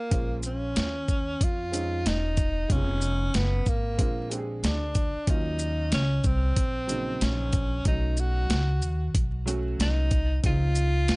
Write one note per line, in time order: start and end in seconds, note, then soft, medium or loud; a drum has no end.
0.00 0.41 A#3 loud
0.10 0.73 A#1 medium
0.10 0.92 G#3 medium
0.10 0.93 C#4 medium
0.10 0.93 F4 medium
0.10 0.92 C5 medium
0.10 kick loud
0.10 closed hi-hat medium
0.43 1.45 C#4 medium
0.43 shaker medium
0.76 1.37 D#2 medium
0.76 snare loud
0.76 closed hi-hat medium
1.08 kick medium
1.08 shaker soft
1.41 2.02 F2 medium
1.41 2.09 F4 loud
1.41 kick medium
1.41 closed hi-hat loud
1.71 2.32 G#3 medium
1.71 2.32 C4 medium
1.71 2.33 C#4 medium
1.71 2.33 D#4 medium
1.71 closed hi-hat medium
1.71 shaker medium
2.06 2.67 E1 medium
2.06 2.73 D#4 loud
2.06 snare loud
2.06 closed hi-hat medium
2.37 kick medium
2.37 closed hi-hat soft
2.37 shaker soft
2.68 3.31 F1 medium
2.68 2.77 G3 soft
2.68 3.50 B3 medium
2.68 3.38 C#4 medium
2.68 3.51 D#4 medium
2.68 3.51 F4 medium
2.68 kick loud
2.68 closed hi-hat medium
2.75 3.53 G#3 medium
3.01 shaker medium
3.34 3.65 F#1 loud
3.34 3.70 B3 medium
3.34 snare loud
3.34 closed hi-hat medium
3.66 3.97 G#1 medium
3.66 4.38 A#3 loud
3.66 kick medium
3.66 shaker soft
3.97 4.60 A#1 medium
3.97 4.25 G#3 medium
3.97 4.25 C4 medium
3.97 4.26 D4 medium
3.97 4.26 F4 medium
3.97 kick medium
3.97 closed hi-hat medium
4.29 4.90 G#3 medium
4.29 4.90 C4 medium
4.29 4.91 D4 medium
4.29 4.39 G4 medium
4.29 closed hi-hat soft
4.29 shaker soft
4.38 4.94 G#4 medium
4.63 5.12 D2 medium
4.63 5.31 D4 medium
4.63 snare loud
4.63 closed hi-hat medium
4.95 kick medium
4.95 closed hi-hat soft
4.95 shaker soft
5.15 muted upright bass stroke soft
5.27 5.89 D#2 loud
5.27 6.08 F#3 medium
5.27 6.09 A#3 medium
5.27 6.09 C#4 medium
5.27 5.93 D#4 loud
5.27 6.09 F4 medium
5.27 kick loud
5.27 closed hi-hat medium
5.59 shaker medium
5.92 6.23 C#2 medium
5.92 6.28 C#4 loud
5.92 snare loud
5.92 closed hi-hat medium
6.24 6.55 C2 loud
6.24 7.25 C4 loud
6.24 kick medium
6.24 shaker soft
6.56 7.18 A#1 medium
6.56 kick medium
6.56 closed hi-hat loud
6.87 7.49 C#3 medium
6.87 7.48 F#3 medium
6.87 7.48 A#3 medium
6.87 7.49 D#4 medium
6.87 closed hi-hat medium
6.87 shaker medium
7.21 7.82 A#1 loud
7.21 7.87 C#4 medium
7.21 snare loud
7.21 closed hi-hat medium
7.53 kick medium
7.53 closed hi-hat soft
7.53 shaker soft
7.85 8.47 B1 loud
7.85 8.66 F#3 medium
7.85 8.67 A3 medium
7.85 8.67 C#4 medium
7.85 8.21 D#4 loud
7.85 8.67 D#4 medium
7.85 kick loud
7.85 closed hi-hat loud
8.17 9.16 F#4 loud
8.17 shaker medium
8.50 8.82 C#2 loud
8.50 snare loud
8.50 closed hi-hat medium
8.82 9.13 D#2 medium
8.82 shaker soft
9.15 9.76 B1 medium
9.15 kick loud
9.15 closed hi-hat loud
9.46 10.06 F#3 medium
9.46 10.07 A3 medium
9.46 10.07 C#4 medium
9.46 10.07 F#4 loud
9.46 closed hi-hat medium
9.46 shaker medium
9.79 10.41 C2 medium
9.79 10.41 D#4 loud
9.79 snare loud
9.79 closed hi-hat medium
10.11 kick loud
10.11 closed hi-hat soft
10.11 shaker soft
10.43 11.05 C#2 loud
10.43 10.51 E3 medium
10.43 11.16 G#3 medium
10.43 11.16 C4 medium
10.43 11.16 D#4 medium
10.43 11.16 F4 loud
10.43 kick loud
10.43 closed hi-hat medium
10.49 11.16 F3 medium
10.75 shaker medium
11.08 11.16 D#2 medium
11.08 snare loud
11.08 closed hi-hat medium